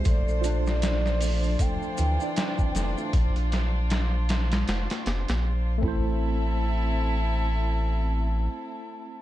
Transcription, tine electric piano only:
X:1
M:4/4
L:1/16
Q:"Swing 16ths" 1/4=78
K:Aphr
V:1 name="Tine electric piano"
z2 [F,D]8- [F,D] [Dd]4- [Dd]- | [Dd]2 z12 [A,CEc]2- | [A,CEc]16 |]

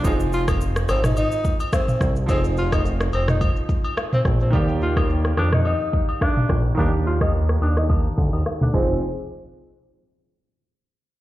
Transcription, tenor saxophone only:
X:1
M:4/4
L:1/16
Q:"Swing 16ths" 1/4=107
K:Fdor
V:1 name="Tenor saxophone"
z2 F z3 C E E3 z C3 z | C z F E z2 C E z4 z C z C | z2 F z3 D E E3 z D3 z | D z F E z2 D E z4 z D C2 |
z16 |]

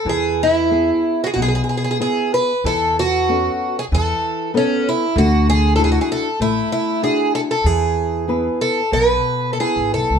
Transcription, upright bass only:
X:1
M:4/4
L:1/16
Q:1/4=94
K:E
V:1 name="Upright bass" clef=bass
E,,8 B,,,2 z6 | E,,8 E,,2 z6 | =D,,8 A,,,2 z6 | E,,8 B,,,2 z3 G,,, B,,, C,, |]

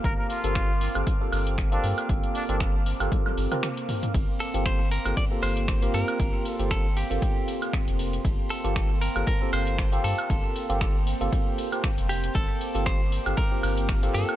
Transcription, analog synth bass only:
X:1
M:4/4
L:1/16
Q:"Swing 16ths" 1/4=117
K:Gm
V:1 name="Analog synth bass" clef=bass
G,,, z2 G,,,3 z G,,, z2 G,,,3 z G,, z | G,,, z2 G,,,3 z G,,, z2 G,,, z4 z | G,,, z2 G,,,3 z G,,, z2 G,,,3 z G,, z | G,,, z2 G,,,3 z G,,, z4 z F,,,2 z |
G,,, z2 G,,,3 z G,,, z2 G,,,3 z G,, z | G,,, z2 G,,,3 z G,,, z4 z F,,,2 z | G,,, z2 G,,,3 z G,,, z2 G,,,3 z G,, z |]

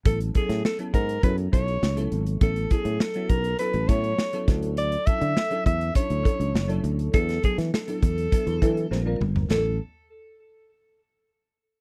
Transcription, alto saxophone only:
X:1
M:4/4
L:1/8
Q:1/4=102
K:A
V:1 name="Alto saxophone"
A G A _B =B c2 z | A G A _B =B c2 z | d e2 e c3 z | A G A4- A z |
A z6 z |]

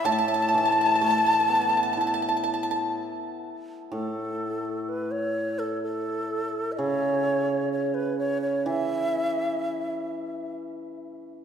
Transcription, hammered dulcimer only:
X:1
M:4/4
L:1/8
Q:1/4=63
K:none
V:1 name="Hammered dulcimer" clef=bass
A,, E, A, B, E4 | A,,6 ^C,2- | ^C,2 E,6 |]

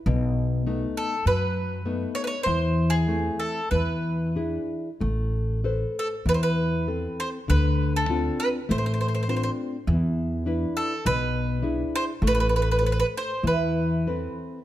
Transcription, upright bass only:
X:1
M:4/4
L:1/8
Q:1/4=99
K:Am
V:1 name="Upright bass" clef=bass
B,,,4 ^F,,4 | E,,4 E,,4 | A,,,4 E,,4 | D,,4 A,,,4 |
E,,4 B,,,4 | A,,,4 E,,4 |]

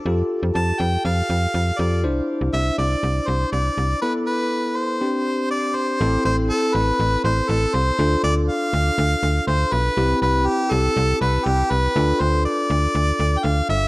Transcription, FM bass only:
X:1
M:4/4
L:1/16
Q:1/4=121
K:Am
V:1 name="FM bass" clef=bass
F,,2 z F,, F,,2 F,,2 F,,2 F,,2 F,,2 F,,2 | C,,2 z C,, C,,2 C,,2 C,,2 C,,2 C,,2 C,,2 | z16 | A,,,2 A,,,3 z A,,,2 A,,,2 A,,,2 A,,,2 C,,2 |
D,,2 D,,3 z D,,2 D,,2 D,,2 D,,2 B,,,2 | C,,2 C,,3 z C,,2 C,,2 C,,2 C,,2 C,,2 | D,,2 D,,3 z D,,2 D,,2 D,,2 D,,2 G,,,2 |]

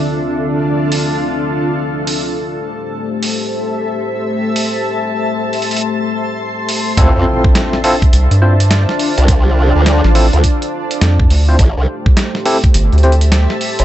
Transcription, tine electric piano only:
X:1
M:4/4
L:1/16
Q:"Swing 16ths" 1/4=104
K:Dm
V:1 name="Tine electric piano"
z16 | z16 | z16 | [CEFA]6 [CEFA] z3 [CEFc] z4 z |
z6 [CEFA] z8 [CEFc] | z6 [CEGA] z3 [CEGc] z4 z |]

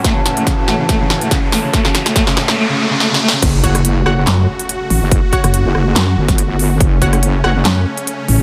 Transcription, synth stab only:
X:1
M:4/4
L:1/8
Q:"Swing 16ths" 1/4=142
K:F#phr
V:1 name="Synth stab"
z8 | z8 | z [Fcf] z [Fcf] z4 | z [Fcf] z6 |
z [Fcf] z [Fcf] z4 |]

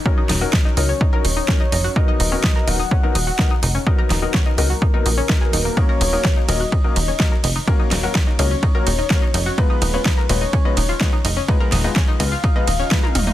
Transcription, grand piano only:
X:1
M:4/4
L:1/16
Q:1/4=126
K:Cblyd
V:1 name="Grand piano"
[G,DEB]3 [G,DEB]3 [G,DEB] z2 [G,DEB] z2 [G,DEB] z3 | [^F,=B,^D^A]3 [F,B,DA]3 [F,B,DA] z2 [F,B,DA] z2 [F,B,DA] z3 | [^F,=B,^D^A]3 [F,B,DA]3 [F,B,DA] z2 [F,B,DA] z2 [F,B,DA]4 | [G,B,DB]3 [G,B,DB]3 [G,B,DB] z2 [G,B,DB] z2 [G,B,DB] z3 |
[G,B,DB]3 [G,B,DB]3 [G,B,DB] z2 [G,B,DB] z2 [G,B,DB] z3 | [A,CFc]3 [A,CFc]3 [A,CFc] z2 [A,CFc] z2 [A,CFc] z3 | [A,CFc]3 [A,CFc]3 [A,CFc] z2 [A,CFc] z2 [A,CFc] z3 |]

